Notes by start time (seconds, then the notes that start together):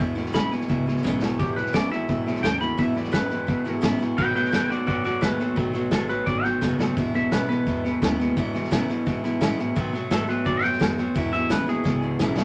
Already playing: E2
0.00 E2 B2 E3 G#3 B3 E4
0.15 E2 B2 E3 G#3 B3 E4, snare
0.26 snare
0.33 D#2 E2 B2 C#3 E3 G#3 B3 E4 B5, kick, snare, hi-hat pedal
0.51 E2 B2 E3 G#3 B3 E4 G#5, snare
0.61 snare
0.68 C#2 E2 B2 E3 G#3 B3 E4, kick, snare
0.86 E2 B2 E3 G#3 B3 E4, snare
0.97 snare
1.03 B1 E2 B2 C#3 E3 G#3 B3 E4, kick, snare, hi-hat pedal
1.21 E2 B2 E3 G#3 B3 E4, snare
1.39 E1 E2 B2 E3 G#3 B3 E4 G4, kick, snare
1.56 E2 B2 E3 G#3 B3 E4 B4, snare
1.66 snare
1.73 G#1 E2 B2 C#3 E3 G#3 B3 E4 D5, kick, snare, hi-hat pedal
1.90 E2 B2 E3 G#3 B3 E4 E5, snare
2.08 B1 E2 B2 E3 G#3 B3 E4, kick, snare
2.26 E2 B2 E3 G#3 B3 E4, snare
2.35 snare
2.43 D#2 E2 B2 C#3 E3 G#3 B3 E4 G5, kick, snare, hi-hat pedal
2.60 E2 B2 E3 G#3 B3 E4 B5, snare
2.77 E2 B2 E3 G#3 B3 E4 E5, kick, snare
2.94 E2 B2 E3 G#3 B3 E4 D5, snare
3.04 snare
3.11 E2 F#2 B2 C#3 E3 G#3 B3 E4 B4, kick, snare, hi-hat pedal
3.29 E2 B2 E3 G#3 B3 E4, snare
3.47 E2 G#2 B2 E3 G#3 B3 E4, kick, snare
3.64 E2 B2 E3 G#3 B3 E4, snare
3.81 E2 A2 B2 C#3 E3 G#3 B3 E4, kick, snare, hi-hat pedal
3.99 E2 B2 E3 G#3 B3 E4, snare
4.17 B2 D#3 F#3 A3 B3 F#4 B4 G5, kick, snare
4.34 B2 F#3 A3 B3 F#4 B4 G5, snare
4.45 snare
4.51 G#2 B2 D#3 G#3 A3 B3 F#4 B4 G5, kick, snare, hi-hat pedal
4.69 B2 F#3 A3 B3 F#4 D5, snare
4.87 F#2 B2 D#3 F#3 A3 B3 F#4 D5, kick, snare
5.04 B2 F#3 A3 B3 F#4 D5, snare
5.21 D#2 B2 D#3 G#3 A3 B3 F#4 B4, kick, snare, hi-hat pedal
5.40 B2 F#3 A3 B3 F#4, snare
5.56 B1 B2 D#3 F#3 A3 B3 F#4, kick, snare
5.73 B2 F#3 A3 B3 F#4, snare
5.91 A1 B2 D#3 G#3 A3 B3 F#4 A4, kick, snare, hi-hat pedal
6.08 B2 F#3 A3 B3 F#4 B4, snare
6.26 G#1 B2 D#3 F#3 A3 B3 F#4 D5, kick, snare
6.43 B2 F#3 A3 B3 F#4 G5, snare
6.61 F#1 B2 D#3 G#3 A3 B3 F#4, kick, snare, hi-hat pedal
6.79 B2 F#3 A3 B3 F#4, snare
6.97 E1 E2 B2 E3 G#3 B3 E4, kick, snare
7.14 E2 B2 E3 G#3 B3 E4 E5, snare
7.31 B1 E2 B2 C#3 E3 G#3 B3 E4 B4, kick, snare, hi-hat pedal
7.48 E2 B2 E3 G#3 B3 E4 B4, snare
7.66 E2 B2 E3 G#3 B3 E4, kick, snare
7.84 E2 B2 E3 G#3 B3 E4, snare
8.02 D#2 E2 B2 C#3 E3 G#3 B3 E4, kick, snare, hi-hat pedal
8.19 E2 B2 E3 G#3 B3 E4, snare
8.36 E2 B2 E3 G#3 B3 E4, kick, snare
8.53 E2 B2 E3 G#3 B3 E4, snare
8.64 snare
8.71 E2 B2 C#3 E3 G#3 B3 E4, kick, snare, hi-hat pedal
8.88 E2 B2 E3 G#3 B3 E4, muted upright bass stroke, snare
9.06 E2 G#2 B2 E3 G#3 B3 E4, kick, snare
9.24 E2 B2 E3 G#3 B3 E4, snare
9.40 E2 A2 B2 C#3 E3 G#3 B3 E4, kick, snare, hi-hat pedal
9.59 E2 B2 E3 G#3 B3 E4, snare
9.75 B2 D#3 F#3 A3 B3 F#4, kick, snare
9.93 B2 F#3 A3 B3 F#4, snare
10.11 G#2 B2 D#3 G#3 A3 B3 F#4 A4, kick, snare, hi-hat pedal
10.27 B2 F#3 A3 B3 F#4 B4, snare
10.44 F#2 B2 D#3 F#3 A3 B3 F#4 D5, kick, snare
10.62 B2 F#3 A3 B3 F#4 G5, snare
10.73 snare
10.79 F2 B2 D#3 G#3 A3 B3 F#4, kick, snare, hi-hat pedal
10.98 B2 F#3 A3 B3 F#4, snare
11.15 E2 B2 E3 G#3 B3 E4, kick, snare
11.32 E2 B2 E3 G#3 B3 E4 E5, snare
11.49 D#2 E2 B2 C#3 E3 G#3 B3 E4 B4, kick, snare, hi-hat pedal
11.66 E2 B2 E3 G#3 B3 E4 G#4, snare
11.84 C#2 E2 B2 E3 G#3 B3 E4, kick, snare
12.02 E2 B2 E3 G#3 B3 E4
12.19 B1 E2 B2 C#3 E3 G#3 B3 E4, kick, snare, hi-hat pedal
12.37 E2 B2 E3 G#3 B3 E4, snare